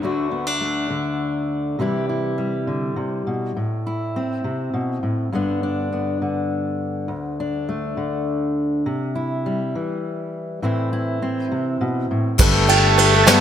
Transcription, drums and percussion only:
12.39 kick loud
12.39 crash loud
12.39 shaker loud
12.69 ride medium
12.69 shaker soft
12.98 ride medium
12.98 shaker soft
13.27 snare loud
13.27 ride medium
13.27 shaker loud

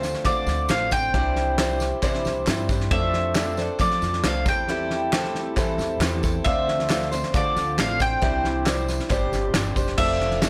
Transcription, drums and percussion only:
0.03 snare soft
0.03 tambourine medium
0.14 snare soft
0.24 kick medium
0.24 snare soft
0.24 clap medium
0.24 tambourine medium
0.47 snare soft
0.47 tambourine medium
0.68 snare loud
0.68 clap loud
0.68 tambourine loud
0.91 kick medium
0.91 snare soft
0.91 tambourine medium
1.14 kick loud
1.14 snare soft
1.36 snare soft
1.36 tambourine soft
1.58 snare loud
1.58 clap loud
1.58 tambourine medium
1.80 snare soft
1.80 tambourine medium
2.02 kick medium
2.02 snare soft
2.02 clap medium
2.02 tambourine medium
2.14 snare soft
2.25 snare soft
2.25 tambourine medium
2.47 snare loud
2.47 clap medium
2.47 tambourine loud
2.69 kick medium
2.69 snare soft
2.69 tambourine medium
2.81 snare soft
2.91 kick loud
2.91 snare soft
3.13 snare soft
3.35 snare loud
3.35 clap loud
3.35 tambourine loud
3.57 snare soft
3.57 tambourine medium
3.79 kick medium
3.79 snare soft
3.79 clap medium
3.79 tambourine medium
3.91 snare soft
4.02 snare soft
4.02 tambourine medium
4.13 snare soft
4.24 snare loud
4.24 clap loud
4.24 tambourine loud
4.46 kick loud
4.46 snare soft
4.46 tambourine medium
4.68 snare soft
4.90 snare soft
5.12 snare loud
5.12 clap loud
5.12 tambourine medium
5.24 snare soft
5.35 snare soft
5.57 kick medium
5.57 snare soft
5.57 clap medium
5.57 tambourine medium
5.79 snare soft
5.79 tambourine medium
6.01 snare loud
6.01 clap medium
6.01 tambourine loud
6.23 kick medium
6.23 snare soft
6.23 tambourine medium
6.46 kick loud
6.46 snare soft
6.68 snare soft
6.80 snare soft
6.90 snare loud
6.90 clap loud
6.90 tambourine loud
7.01 snare soft
7.12 snare soft
7.12 tambourine medium
7.23 snare soft
7.34 kick medium
7.34 snare soft
7.34 clap medium
7.34 tambourine medium
7.56 snare soft
7.56 tambourine medium
7.79 snare loud
7.79 clap loud
7.79 tambourine loud
8.00 kick medium
8.00 snare soft
8.00 tambourine medium
8.22 kick loud
8.22 snare soft
8.45 snare soft
8.66 snare loud
8.66 clap medium
8.66 tambourine medium
8.88 snare soft
8.88 tambourine medium
9.00 snare soft
9.10 kick medium
9.10 snare soft
9.10 clap medium
9.10 tambourine medium
9.33 snare soft
9.33 tambourine medium
9.54 snare loud
9.54 clap loud
9.54 tambourine loud
9.76 kick medium
9.76 snare soft
9.76 tambourine medium
9.87 snare soft
9.98 kick loud
9.98 snare soft
9.98 crash loud
10.20 snare soft
10.31 snare soft
10.42 snare loud
10.42 clap medium
10.42 tambourine loud

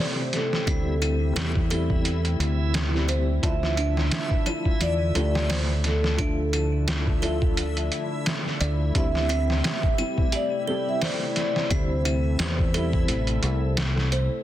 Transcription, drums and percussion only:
0.33 snare soft
0.33 closed hi-hat medium
0.53 snare medium
0.67 kick loud
0.67 closed hi-hat medium
1.02 closed hi-hat medium
1.36 snare loud
1.36 closed hi-hat loud
1.56 kick medium
1.71 closed hi-hat medium
1.90 kick medium
2.05 closed hi-hat medium
2.25 closed hi-hat soft
2.40 closed hi-hat medium
2.74 snare loud
2.74 closed hi-hat medium
2.94 snare soft
3.09 closed hi-hat medium
3.43 kick loud
3.43 closed hi-hat medium
3.63 snare soft
3.77 closed hi-hat medium
3.97 snare soft
4.11 snare loud
4.11 closed hi-hat medium
4.31 kick medium
4.46 closed hi-hat medium
4.65 kick medium
4.81 closed hi-hat medium
5.15 closed hi-hat medium
5.35 snare medium
5.50 snare loud
5.50 open hi-hat medium
5.84 snare soft
5.84 closed hi-hat medium
6.04 snare medium
6.18 kick loud
6.18 closed hi-hat medium
6.53 closed hi-hat medium
6.88 snare loud
6.88 closed hi-hat loud
7.07 kick medium
7.23 closed hi-hat medium
7.42 kick medium
7.57 closed hi-hat medium
7.77 closed hi-hat soft
7.92 closed hi-hat medium
8.26 snare loud
8.26 closed hi-hat medium
8.46 snare soft
8.61 closed hi-hat medium
8.95 kick loud
8.95 closed hi-hat medium
9.15 snare soft
9.30 closed hi-hat medium
9.50 snare soft
9.64 snare loud
9.64 closed hi-hat loud
9.83 kick loud
9.98 closed hi-hat medium
10.18 kick medium
10.32 closed hi-hat medium
11.01 snare loud
11.01 open hi-hat medium
11.36 snare soft
11.36 closed hi-hat medium
11.56 snare medium
11.70 kick loud
11.70 closed hi-hat medium
12.05 closed hi-hat medium
12.39 snare loud
12.39 closed hi-hat medium
12.59 kick loud
12.74 closed hi-hat medium
12.93 kick medium
13.08 closed hi-hat medium
13.27 closed hi-hat soft
13.43 closed hi-hat medium
13.77 snare loud
13.77 closed hi-hat medium
13.97 snare soft
14.12 closed hi-hat medium

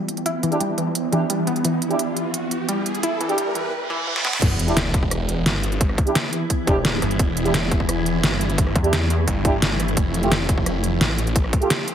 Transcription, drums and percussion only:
0.09 closed hi-hat medium
0.17 closed hi-hat soft
0.26 closed hi-hat medium
0.43 closed hi-hat medium
0.52 closed hi-hat soft
0.60 closed hi-hat medium
0.78 closed hi-hat medium
0.95 closed hi-hat medium
1.13 closed hi-hat medium
1.30 closed hi-hat medium
1.47 closed hi-hat medium
1.56 closed hi-hat soft
1.65 closed hi-hat medium
1.82 closed hi-hat medium
1.91 closed hi-hat soft
1.99 closed hi-hat medium
2.17 closed hi-hat medium
2.34 closed hi-hat medium
2.51 closed hi-hat medium
2.69 closed hi-hat medium
2.86 closed hi-hat medium
2.95 closed hi-hat soft
3.03 closed hi-hat medium
3.21 closed hi-hat medium
3.29 closed hi-hat soft
3.38 closed hi-hat medium
3.55 closed hi-hat medium
4.16 snare medium
4.25 snare medium
4.33 snare medium
4.42 kick loud
4.42 closed hi-hat medium
4.42 crash loud
4.59 closed hi-hat medium
4.68 closed hi-hat soft
4.77 snare loud
4.77 closed hi-hat loud
4.94 kick loud
4.94 closed hi-hat medium
5.03 kick medium
5.11 cross-stick medium
5.11 closed hi-hat loud
5.29 closed hi-hat medium
5.46 snare loud
5.46 closed hi-hat loud
5.55 cross-stick soft
5.63 closed hi-hat medium
5.72 closed hi-hat soft
5.81 kick loud
5.81 closed hi-hat medium
5.89 cross-stick soft
5.98 kick loud
5.98 closed hi-hat medium
6.07 closed hi-hat soft
6.15 snare loud
6.15 closed hi-hat loud
6.33 closed hi-hat medium
6.50 kick medium
6.50 closed hi-hat medium
6.67 kick loud
6.67 closed hi-hat medium
6.85 snare loud
6.85 closed hi-hat medium
7.02 cross-stick soft
7.02 closed hi-hat medium
7.11 closed hi-hat soft
7.19 kick loud
7.19 closed hi-hat medium
7.37 closed hi-hat medium
7.45 closed hi-hat soft
7.54 snare loud
7.54 closed hi-hat medium
7.71 kick loud
7.71 closed hi-hat medium
7.80 kick medium
7.89 cross-stick soft
7.89 closed hi-hat medium
8.06 closed hi-hat medium
8.24 snare loud
8.24 closed hi-hat medium
8.32 cross-stick soft
8.41 closed hi-hat medium
8.50 closed hi-hat soft
8.58 kick loud
8.58 closed hi-hat medium
8.67 cross-stick soft
8.76 kick loud
8.76 closed hi-hat medium
8.84 closed hi-hat soft
8.93 snare loud
8.93 closed hi-hat medium
9.10 closed hi-hat medium
9.28 kick medium
9.28 closed hi-hat medium
9.45 kick loud
9.45 closed hi-hat medium
9.62 snare loud
9.62 closed hi-hat medium
9.80 cross-stick soft
9.80 closed hi-hat medium
9.88 closed hi-hat soft
9.97 kick loud
9.97 closed hi-hat medium
10.14 closed hi-hat medium
10.23 closed hi-hat soft
10.32 snare loud
10.32 closed hi-hat medium
10.49 kick loud
10.49 closed hi-hat medium
10.58 kick medium
10.66 cross-stick soft
10.66 closed hi-hat medium
10.84 closed hi-hat medium
11.01 snare loud
11.01 closed hi-hat medium
11.10 cross-stick soft
11.18 closed hi-hat medium
11.27 closed hi-hat soft
11.36 kick loud
11.36 closed hi-hat medium
11.44 cross-stick soft
11.53 kick loud
11.53 closed hi-hat medium
11.62 closed hi-hat soft
11.70 snare loud
11.70 closed hi-hat medium
11.88 closed hi-hat medium

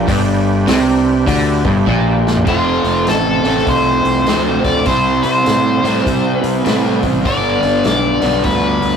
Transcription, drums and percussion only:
0.08 kick loud
0.08 open hi-hat medium
0.68 snare loud
0.68 open hi-hat medium
1.27 kick loud
1.27 open hi-hat medium
1.65 kick loud
1.87 kick medium
2.27 snare medium
2.36 floor tom medium
2.47 kick loud
2.47 crash medium
2.84 open hi-hat soft
3.07 snare loud
3.07 open hi-hat medium
3.45 open hi-hat soft
3.58 snare soft
3.67 kick loud
3.67 open hi-hat medium
4.05 open hi-hat soft
4.26 snare loud
4.26 open hi-hat medium
4.64 kick medium
4.64 open hi-hat soft
4.85 kick loud
4.85 open hi-hat medium
5.23 open hi-hat soft
5.46 snare loud
5.46 open hi-hat medium
5.85 open hi-hat soft
5.97 snare soft
6.06 kick medium
6.06 open hi-hat medium
6.43 open hi-hat soft
6.66 snare loud
6.66 open hi-hat medium
7.03 kick medium
7.03 open hi-hat soft
7.25 kick loud
7.25 open hi-hat medium
7.63 open hi-hat soft
7.84 snare loud
7.84 open hi-hat medium
8.22 open hi-hat soft
8.44 kick loud
8.44 open hi-hat medium
8.82 open hi-hat soft

